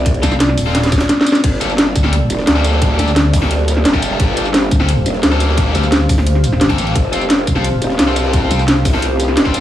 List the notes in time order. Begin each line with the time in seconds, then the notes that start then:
Already playing: C2 A3 C4 F4 D5
0.06 kick, closed hi-hat, ride
0.14 closed hi-hat
0.23 C2 C4 F4 A4, kick, snare, closed hi-hat, ride, tambourine
0.32 snare, tambourine
0.40 snare, closed hi-hat, ride
0.49 snare
0.57 D#1, open hi-hat, tambourine
0.66 C4 F4 A4
0.75 snare, closed hi-hat, ride
0.83 snare, closed hi-hat, ride
0.86 snare
0.92 kick, snare, closed hi-hat, ride, tambourine
0.98 snare
1.01 snare, ride
1.09 snare, closed hi-hat
1.21 snare
1.26 closed hi-hat, ride, tambourine
1.32 snare, closed hi-hat, tambourine
1.35 snare
1.44 G1 G3 A#3 G4 A4 D5, kick, closed hi-hat, crash, ride
1.61 A#3 G4 A4, closed hi-hat, ride, tambourine
1.70 C5, tambourine
1.78 snare, closed hi-hat, ride
1.95 D2, kick, closed hi-hat, ride, tambourine
2.03 A#3 G4 A4 F5, snare
2.13 closed hi-hat, ride
2.30 F1, closed hi-hat, ride, tambourine
2.39 snare
2.47 D2, snare, closed hi-hat, ride
2.56 A#3 G4 A4, snare
2.64 closed hi-hat, ride, tambourine
2.73 snare
2.82 kick, closed hi-hat, ride
2.99 D2 A#3 G4 A4, closed hi-hat, ride, tambourine
3.08 snare, tambourine
3.16 snare, closed hi-hat, ride
3.33 D2, kick, open hi-hat, tambourine
3.42 A#3 G4 A4, snare
3.51 closed hi-hat, ride
3.68 snare, closed hi-hat, ride, tambourine
3.77 snare
3.85 F1, snare, closed hi-hat, ride
3.94 A#3 G4 A4, kick, snare
4.02 closed hi-hat, ride, tambourine
4.11 snare
4.20 G1 C5, kick, closed hi-hat, ride
4.37 A#3 G4 A4, closed hi-hat, ride, tambourine
4.45 tambourine
4.54 snare, closed hi-hat, ride
4.71 D2, kick, closed hi-hat, ride, tambourine
4.80 A#3 G4 A4, snare
4.89 closed hi-hat, ride
5.06 F1, closed hi-hat, ride, tambourine
5.15 snare
5.23 D2, snare, closed hi-hat, ride
5.32 A#3 G4 A4, snare
5.40 closed hi-hat, ride, tambourine
5.49 snare
5.58 kick, closed hi-hat, ride
5.74 D2 A#3 G4 A4, closed hi-hat, ride, tambourine
5.83 snare, tambourine
5.92 snare, closed hi-hat, ride
6.09 D2, kick, open hi-hat, tambourine
6.18 snare
6.27 closed hi-hat, ride
6.35 snare
6.44 closed hi-hat, ride, tambourine
6.52 snare
6.61 G1, snare, closed hi-hat, ride
6.70 A#3 G4 A4, kick, snare, ride
6.78 A1, closed hi-hat, tambourine
6.87 ride
6.95 F1 A3 C4 F4, kick, closed hi-hat, ride
7.12 C4 F4 A4, closed hi-hat, ride, tambourine
7.21 tambourine
7.30 snare, closed hi-hat, ride
7.47 C2, kick, closed hi-hat, ride, tambourine
7.56 C4 F4 A4, snare
7.64 closed hi-hat, ride
7.74 A5
7.82 D#1, closed hi-hat, ride, tambourine
7.90 snare
7.99 C2, snare, closed hi-hat, ride
8.07 C4 F4 A4, snare
8.16 closed hi-hat, ride, tambourine
8.25 snare
8.33 kick, closed hi-hat, ride
8.51 C2 C4 F4 A4, closed hi-hat, ride, tambourine
8.59 snare, tambourine
8.68 snare, closed hi-hat, ride
8.85 C2, kick, open hi-hat, tambourine
8.94 C4 F4 A4, snare
9.02 closed hi-hat, ride
9.20 snare, closed hi-hat, ride, tambourine
9.28 snare
9.37 D#1, snare, closed hi-hat, ride
9.45 C4 F4 A4, kick, snare
9.54 closed hi-hat, ride, tambourine